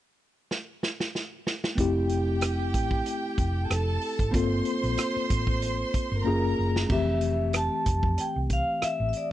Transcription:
0.51 snare
0.83 snare
1.00 snare
1.15 snare
1.47 snare
1.64 snare
1.75 fingered electric bass F1, tine electric piano A3 C4 E4, violin section G4 G5, kick, closed hi-hat
1.80 tine electric piano G4
2.09 closed hi-hat
2.41 cross-stick, closed hi-hat
2.74 fingered electric bass A1, kick, closed hi-hat
2.91 kick
3.06 closed hi-hat
3.38 fingered electric bass F1, kick, closed hi-hat
3.70 fingered electric bass F1, violin section A4 A5, cross-stick, closed hi-hat
4.01 open hi-hat
4.19 fingered electric bass G#1, kick, closed hi-hat
4.31 fingered electric bass G1, tine electric piano A#3 C4 F4, violin section C5 C6, kick, closed hi-hat
4.36 tine electric piano A4
4.65 closed hi-hat
4.83 fingered electric bass A#1, closed hi-hat
4.97 cross-stick, closed hi-hat
5.16 muted fingered electric bass stroke
5.30 fingered electric bass A1, kick, cross-stick, closed hi-hat
5.47 kick
5.62 closed hi-hat
5.94 muted fingered electric bass stroke, kick, closed hi-hat
6.11 fingered electric bass G1
6.24 fingered electric bass F#1, tine electric piano A#3 C#4 F4 G#4, violin section A#4 A#5
6.59 fingered electric bass F#1
6.76 snare
6.87 fingered electric bass F1, tine electric piano E3 A3 C4, kick, crash
6.92 tine electric piano G4, vibraphone E5
7.21 closed hi-hat
7.53 vibraphone A5, cross-stick, closed hi-hat
7.86 fingered electric bass F1, kick, cross-stick, closed hi-hat
8.03 fingered electric bass F2, kick
8.18 vibraphone G5, muted fingered electric bass stroke, closed hi-hat
8.36 fingered electric bass C2
8.50 vibraphone F5, kick, closed hi-hat
8.82 vibraphone E5, muted fingered electric bass stroke, cross-stick, closed hi-hat
9.00 fingered electric bass A1
9.09 vibraphone E5
9.13 closed hi-hat
9.17 vibraphone D5

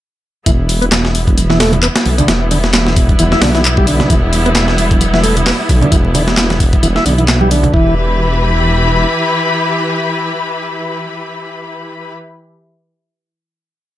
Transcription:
0.46 detuned saw bass E1, tonewheel organ E3, string section G3 B3 E4, kick, closed hi-hat, muted conga
0.69 closed hi-hat, open hi-hat
0.82 tonewheel organ B3, closed hi-hat
0.92 snare, clap, closed hi-hat, muted conga
1.05 snare
1.15 closed hi-hat, open hi-hat
1.27 kick, closed hi-hat, muted conga
1.38 closed hi-hat, high conga
1.50 tonewheel organ E3, snare
1.60 tonewheel organ A3, snare, closed hi-hat, open hi-hat
1.73 closed hi-hat, muted conga, low conga
1.83 tonewheel organ B3, clap, closed hi-hat
1.96 snare, closed hi-hat
2.05 detuned saw bass B1, open hi-hat, muted conga
2.18 tonewheel organ D3, closed hi-hat, low conga
2.28 detuned saw bass E1, tonewheel organ E3, snare, closed hi-hat
2.51 tonewheel organ D3, closed hi-hat, open hi-hat, muted conga
2.64 snare, closed hi-hat
2.73 snare, clap, closed hi-hat
2.86 snare, muted conga
2.96 kick, closed hi-hat, open hi-hat
3.09 kick, closed hi-hat
3.19 detuned saw bass E1, tonewheel organ E3, closed hi-hat
3.32 tonewheel organ E4, snare, muted conga
3.41 detuned saw bass B1, tonewheel organ D3, snare, closed hi-hat, open hi-hat
3.55 tonewheel organ E3, snare, closed hi-hat
3.64 clap, closed hi-hat, muted conga
3.77 tonewheel organ G3, kick
3.87 tonewheel organ D3, closed hi-hat, open hi-hat
4.00 snare, closed hi-hat, low conga
4.10 detuned saw bass E1, tonewheel organ E3, kick, closed hi-hat, muted conga
4.33 closed hi-hat, open hi-hat
4.46 tonewheel organ B3, closed hi-hat, muted conga
4.55 snare, clap, closed hi-hat
4.68 snare
4.78 closed hi-hat, open hi-hat
4.91 kick, closed hi-hat, muted conga
5.01 closed hi-hat, high conga
5.14 tonewheel organ E3, snare
5.23 tonewheel organ A3, closed hi-hat, open hi-hat, muted conga
5.37 closed hi-hat, low conga
5.46 tonewheel organ B3, snare, clap, closed hi-hat, open hi-hat
5.69 detuned saw bass B1, kick, closed hi-hat, open hi-hat, muted conga
5.81 tonewheel organ D3, closed hi-hat, low conga
5.92 detuned saw bass E1, tonewheel organ E3, kick, closed hi-hat
6.05 muted conga
6.14 tonewheel organ D3, closed hi-hat, open hi-hat, low conga
6.28 snare, closed hi-hat
6.37 snare, clap, closed hi-hat
6.50 snare, closed hi-hat, muted conga
6.60 kick, closed hi-hat, open hi-hat
6.73 kick, closed hi-hat
6.83 detuned saw bass E1, tonewheel organ E3, closed hi-hat, muted conga
6.96 tonewheel organ E4, snare
7.06 detuned saw bass B1, tonewheel organ D3, closed hi-hat, open hi-hat
7.18 tonewheel organ E3, closed hi-hat
7.28 snare, clap, closed hi-hat, muted conga
7.41 tonewheel organ G3, high conga
7.51 tonewheel organ D3, closed hi-hat, open hi-hat
7.63 closed hi-hat, muted conga, low conga
7.73 detuned saw bass E1, string section E3 E4 G4 B4 B5, tonewheel organ E3, kick

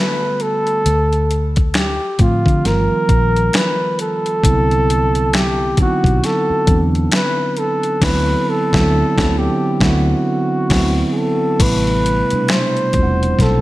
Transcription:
Already playing: tine electric piano D3 G3 A3 B3 F#4, flugelhorn B4
0.40 flugelhorn A4, closed hi-hat
0.67 closed hi-hat
0.86 fingered electric bass D2, closed hi-hat
1.13 closed hi-hat
1.31 closed hi-hat
1.56 kick, closed hi-hat
1.74 flugelhorn G4, finger snap, snare, closed hi-hat
2.19 fingered electric bass A2, tine electric piano D3 F3 A3 C4 F4, flugelhorn F4, kick, closed hi-hat
2.46 fingered electric bass D3, kick, closed hi-hat
2.65 fingered electric bass G1, tine electric piano D#3 F3 G3 B3 F4, flugelhorn A#4, snare, closed hi-hat
2.92 muted fingered electric bass stroke
3.09 fingered electric bass A#1, kick, closed hi-hat
3.36 closed hi-hat
3.53 flugelhorn B4, finger snap, snare, closed hi-hat
3.99 flugelhorn A4, closed hi-hat
4.26 closed hi-hat
4.44 fingered electric bass C2, tine electric piano D3 F#3 B3 C4 E4, kick, closed hi-hat
4.71 closed hi-hat
4.90 closed hi-hat
5.15 closed hi-hat
5.33 flugelhorn G4, finger snap, snare, closed hi-hat
5.77 tine electric piano D3 F#3 B3 C4 D#4, muted fingered electric bass stroke, kick, closed hi-hat
5.81 flugelhorn F#4
5.86 tine electric piano E4
6.04 fingered electric bass B1, kick, closed hi-hat
6.24 flugelhorn A4, snare, closed hi-hat
6.50 muted fingered electric bass stroke
6.67 fingered electric bass E2, tine electric piano D3 F#3 B3 C4 D4, kick, closed hi-hat
6.95 closed hi-hat
7.12 flugelhorn B4, finger snap, snare, closed hi-hat
7.57 flugelhorn A4, closed hi-hat
7.83 closed hi-hat
8.01 fingered electric bass D2, tine electric piano D3 F#3 B3 C4 E4, flugelhorn B4, kick, snare, crash
8.50 flugelhorn A4
8.73 fingered electric bass D2, tine electric piano D3 F#3 B3 C4 E4, kick, snare
9.18 fingered electric bass D2, tine electric piano D3 F#3 B3 C4 E4, kick, snare
9.39 flugelhorn G4
9.81 fingered electric bass D2, tine electric piano D3 F#3 B3 C4 E4, flugelhorn F#4, kick, snare
10.70 fingered electric bass D2, tine electric piano D3 F#3 B3 C4 E4, kick, snare, crash
11.12 flugelhorn G#4
11.18 flugelhorn A4
11.59 fingered electric bass A1, tine electric piano C3 G3 A3 B3 E4, flugelhorn B4, kick, closed hi-hat, crash
11.87 closed hi-hat
12.06 closed hi-hat
12.30 tine electric piano B2 C3 G3 A3 D4, muted fingered electric bass stroke, closed hi-hat
12.48 flugelhorn C5, finger snap, snare, closed hi-hat
12.77 closed hi-hat
12.93 fingered electric bass E1, tine electric piano G3 A3 C4 F4, kick, closed hi-hat
13.03 tine electric piano F#5
13.23 closed hi-hat
13.39 fingered electric bass B1, flugelhorn A4, kick, snare, closed hi-hat

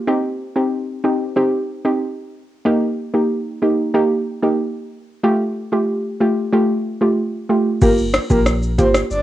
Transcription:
0.07 synth pluck C4 D#4 G4
0.56 synth pluck C4 D#4 G4
1.04 synth pluck C4 D#4 G4
1.36 synth pluck C4 D#4 G4
1.85 synth pluck C4 D#4 G4
2.65 synth pluck A#3 D#4 G4
3.14 synth pluck A#3 D#4 G4
3.62 synth pluck A#3 D#4 G4
3.94 synth pluck A#3 D#4 G4
4.43 synth pluck A#3 D#4 G4
5.23 synth pluck A3 F4 G4
5.72 synth pluck A3 F4 G4
6.20 synth pluck A3 F4 G4
6.53 synth pluck A3 F4 G4
7.01 synth pluck A3 F4 G4
7.49 synth pluck A3 F4 G4
7.82 sub bass G1, synth pluck A#3 F4 G4, soft synth lead A#4, kick, crash, shaker
7.98 shaker
8.14 cross-stick, closed hi-hat, shaker
8.30 sub bass A#1, synth pluck A#3 F4 G4, soft synth lead A#4, kick, shaker
8.46 cross-stick, shaker
8.63 shaker
8.78 sub bass G1, synth pluck A#3 F4 G4, soft synth lead C5, kick, closed hi-hat, shaker
8.94 cross-stick, shaker
9.10 sub bass G1, soft synth lead D5, shaker

